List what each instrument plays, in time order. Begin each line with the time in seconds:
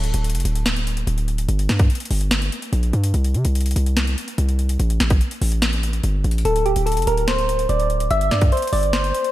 Already playing: 808-style bass D1
0.04 closed hi-hat
0.14 808-style bass D1, closed hi-hat
0.24 closed hi-hat
0.30 closed hi-hat
0.35 808-style bass F1, closed hi-hat
0.40 closed hi-hat
0.45 808-style bass D1, closed hi-hat
0.55 closed hi-hat
0.66 snare, closed hi-hat
0.76 closed hi-hat
0.87 closed hi-hat
0.97 closed hi-hat
1.07 808-style bass D1, closed hi-hat
1.18 closed hi-hat
1.28 closed hi-hat
1.38 closed hi-hat
1.48 808-style bass G1, closed hi-hat
1.59 closed hi-hat
1.69 808-style bass G2, snare, closed hi-hat
1.79 kick, closed hi-hat
1.90 closed hi-hat
1.95 closed hi-hat
2.00 closed hi-hat
2.05 closed hi-hat
2.11 808-style bass G1, open hi-hat
2.21 closed hi-hat
2.31 snare, closed hi-hat
2.42 closed hi-hat
2.52 closed hi-hat
2.62 closed hi-hat
2.73 808-style bass A#1, closed hi-hat
2.83 closed hi-hat
2.93 808-style bass G2, closed hi-hat
3.04 closed hi-hat
3.14 808-style bass C2, closed hi-hat
3.24 closed hi-hat
3.34 808-style bass C3, closed hi-hat
3.45 808-style bass C2, closed hi-hat
3.55 closed hi-hat
3.61 closed hi-hat
3.66 closed hi-hat
3.71 closed hi-hat
3.76 808-style bass C2, closed hi-hat
3.86 closed hi-hat
3.97 snare, closed hi-hat
4.07 closed hi-hat
4.18 closed hi-hat
4.28 closed hi-hat
4.38 808-style bass C2, closed hi-hat
4.49 closed hi-hat
4.59 closed hi-hat
4.69 closed hi-hat
4.80 808-style bass A1, closed hi-hat
4.90 closed hi-hat
5.00 808-style bass A1, snare, closed hi-hat
5.10 kick, closed hi-hat
5.21 closed hi-hat
5.31 closed hi-hat
5.42 808-style bass A1, open hi-hat
5.52 closed hi-hat
5.62 snare, closed hi-hat
5.73 closed hi-hat
5.83 closed hi-hat
5.93 closed hi-hat
6.04 808-style bass G1, closed hi-hat
6.24 808-style bass A1, closed hi-hat
6.31 closed hi-hat
6.38 closed hi-hat
6.45 808-style bass D1, synth keys A4, closed hi-hat
6.56 closed hi-hat
6.66 synth keys G4, closed hi-hat
6.76 808-style bass D1, closed hi-hat
6.86 synth keys A4, closed hi-hat
6.92 closed hi-hat
6.97 808-style bass F1, closed hi-hat
7.02 closed hi-hat
7.07 808-style bass D1, synth keys A#4, closed hi-hat
7.17 closed hi-hat
7.28 synth keys C5, snare, closed hi-hat
7.38 closed hi-hat
7.49 closed hi-hat
7.59 closed hi-hat
7.69 808-style bass D1, synth keys D5, closed hi-hat
7.80 closed hi-hat
7.90 closed hi-hat
8.00 closed hi-hat
8.11 808-style bass G1, synth keys E5, closed hi-hat
8.21 closed hi-hat
8.31 808-style bass G2, synth keys D5, snare, closed hi-hat
8.41 kick, closed hi-hat
8.52 synth keys C5, closed hi-hat
8.57 closed hi-hat
8.62 closed hi-hat
8.67 closed hi-hat
8.73 808-style bass G1, synth keys D5, open hi-hat
8.83 closed hi-hat
8.93 synth keys C5, snare, closed hi-hat
9.04 closed hi-hat
9.15 closed hi-hat
9.24 closed hi-hat